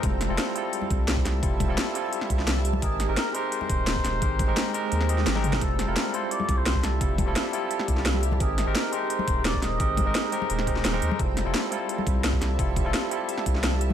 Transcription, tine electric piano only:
X:1
M:4/4
L:1/16
Q:1/4=172
K:F
V:1 name="Tine electric piano"
[G,CEFA]3 [G,CEFA]3 [G,CEFA]8- [G,CEFA]2 | [G,CEFA]3 [G,CEFA]3 [G,CEFA]8- [G,CEFA]2 | [_A,C_EGB]3 [A,CEGB]3 [A,CEGB]8- [A,CEGB]2 | [_A,C_EGB]3 [A,CEGB]3 [A,CEGB]4 [A,CEG_e] z2 [A,CEGB]3 |
[G,CEFA]3 [G,CEFA]3 [G,CEFA]8- [G,CEFA]2 | [G,CEFA]3 [G,CEFA]3 [G,CEFA]8- [G,CEFA]2 | [_A,C_EGB]3 [A,CEGB]3 [A,CEGB]8- [A,CEGB]2 | [_A,C_EGB]3 [A,CEGB]3 [A,CEGB]4 [A,CEG_e] z2 [A,CEGB]3 |
[G,CEFA]3 [G,CEFA]3 [G,CEFA]8- [G,CEFA]2 | [G,CEFA]3 [G,CEFA]3 [G,CEFA]8- [G,CEFA]2 |]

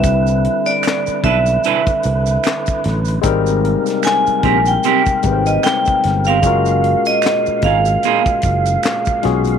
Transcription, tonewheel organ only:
X:1
M:4/4
L:1/8
Q:"Swing 16ths" 1/4=75
K:Cdor
V:1 name="Tonewheel organ"
[D,=E=B]8 | [C,B,B]8 | [B,,_A,f]8 |]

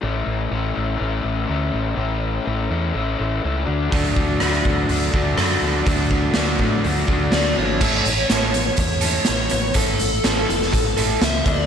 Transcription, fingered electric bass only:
X:1
M:4/4
L:1/8
Q:1/4=123
K:A
V:1 name="Fingered electric bass" clef=bass
A,,, A,,, A,,, A,,, A,,, A,,, D,, A,,, | A,,,2 A,,, E,, A,,, A,,, C,, D,, | D,, D,, D,, D,, D,, D,, F,, D,, | D,,2 D,, A,, D,, D,, D,, G,,, |
A,,, A,,, A,,,2 E,,2 A,,, A,,, | A,,, A,,, A,,, E,,, A,,, A,,, C,, D,, |]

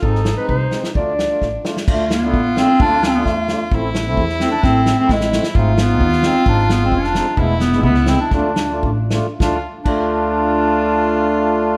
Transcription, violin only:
X:1
M:2/4
L:1/16
Q:1/4=130
K:none
V:1 name="Violin"
^D8 | D6 z2 | F8- | F8 |
E8- | E4 E4 | F8- | F8 |
E4 E4 | D6 z2 | F z2 F4- F- | F8 |]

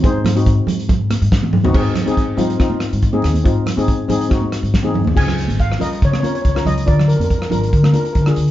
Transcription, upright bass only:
X:1
M:4/4
L:1/16
Q:"Swing 16ths" 1/4=140
K:Abmix
V:1 name="Upright bass" clef=bass
A,,6 A,,4- A,, A,, A,,4 | A,,3 A,,3 A,,2 A,,3 A,,3 E,,2 | A,,3 A,,3 A,,2 A,,3 A,,3 E,,2 | D,,3 A,,,3 C,,2 D,2 z2 D,,2 D,,2 |
=D,,3 F,,3 A,,,2 =D,2 z2 D,,2 D,,2 |]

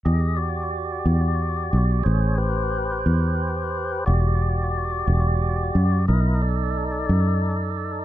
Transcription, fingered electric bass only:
X:1
M:12/8
L:1/8
Q:3/8=60
K:Em
V:1 name="Fingered electric bass" clef=bass
E,,3 E,,2 B,,, A,,,3 E,,3 | E,,,3 E,,,2 F,, B,,,3 F,,3 |]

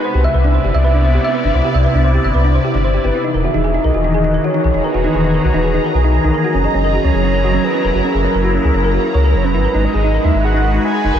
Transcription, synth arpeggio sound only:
X:1
M:4/4
L:1/16
Q:1/4=150
K:Elyd
V:1 name="Synth arpeggio sound"
=c =G e B =D c G e B D c G e B D c | =G e B =D =c G e B D c G D c G G E | D A F D G D A F D G D A F D G D | A F D G D A F D G D A F D G D A |
F C G C A F C G C A F C G C A F | C G C A F C G C A F E c A z C E | A D D G D A D D G D A D D G D A |]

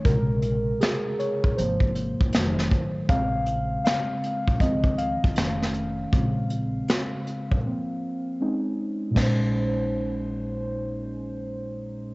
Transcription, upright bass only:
X:1
M:4/4
L:1/16
Q:"Swing 16ths" 1/4=79
K:Bbm
V:1 name="Upright bass" clef=bass
B,,,4 z3 B,,, A,,,3 A,,, F,,,2 =A,,,2 | B,,,4 z3 B,,, D,,3 C,, F,,,4 | B,,,4 z3 B,,, z8 | B,,,16 |]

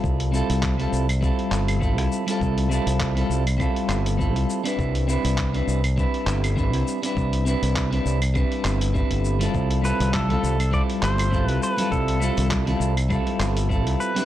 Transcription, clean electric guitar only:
X:1
M:4/4
L:1/16
Q:"Swing 16ths" 1/4=101
K:Flyd
V:1 name="Clean electric guitar"
[G,CEFA]2 [G,CEFA]3 [G,CEFA]2 z [G,CEFA]4 [G,CEFA]3 [G,CEFA]- | [G,CEFA]2 [G,CEFA]3 [G,CEFA]2 z [G,CEFA]4 [G,CEFA]3 [G,CDEB]- | [G,CDEB]2 [G,CDEB]3 [G,CDEB]2 z [G,CDEB]4 [G,CDEB]3 [G,CDEB]- | [G,CDEB]2 [G,CDEB]3 [G,CDEB]2 z [G,CDEB]4 [G,CDEB]3 [G,CEFA]- |
[G,CEFA]2 [G,CEFA]3 [G,CEFA]2 z [G,CEFA]4 [G,CEFA]3 [G,CEFA]- | [G,CEFA]2 [G,CEFA]3 [G,CEFA]2 z [G,CEFA]4 [G,CEFA]3 [G,CDEB] |]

